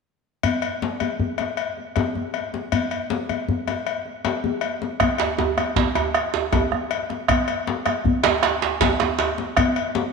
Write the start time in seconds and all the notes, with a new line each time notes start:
0.43 cowbell, djembe bass
0.62 cowbell
0.82 djembe slap
1.00 cowbell, djembe tone
1.20 djembe slap, djembe bass
1.38 cowbell, djembe slap
1.57 cowbell
1.77 djembe slap
1.96 cowbell, djembe slap, djembe bass
2.15 djembe tone
2.34 cowbell, djembe slap
2.54 djembe slap
2.72 cowbell, djembe bass
2.91 cowbell
3.10 djembe slap
3.29 cowbell, djembe tone
3.49 djembe slap, djembe bass
3.68 cowbell, djembe slap
3.87 cowbell
4.06 djembe slap
4.25 cowbell, djembe slap
4.44 djembe tone
4.61 cowbell
4.82 djembe slap
5.00 bombo rim, bombo low, cowbell, djembe bass
5.18 cowbell, djembe slap
5.38 djembe slap, djembe tone
5.57 bombo rim, cowbell, djembe tone
5.76 bombo rim, bombo low, djembe slap, djembe bass
5.95 cowbell, djembe tone
6.14 bombo rim, cowbell, djembe slap
6.34 djembe slap
6.52 bombo low, cowbell, djembe slap, djembe tone, djembe bass
6.72 bombo rim, djembe tone
6.91 cowbell
7.10 bombo rim, djembe slap
7.28 bombo rim, bombo low, cowbell, djembe bass
7.48 cowbell
7.67 djembe slap
7.86 bombo rim, cowbell, djembe tone
8.04 bombo rim, bombo low, djembe bass
8.23 cowbell, djembe slap
8.43 bombo rim, cowbell, djembe slap
8.62 djembe slap
8.80 bombo low, cowbell, djembe slap, djembe bass
9.00 bombo rim, djembe slap, djembe tone
9.19 cowbell, djembe slap
9.38 djembe slap
9.57 bombo rim, bombo low, cowbell, djembe bass
9.76 cowbell
9.95 djembe slap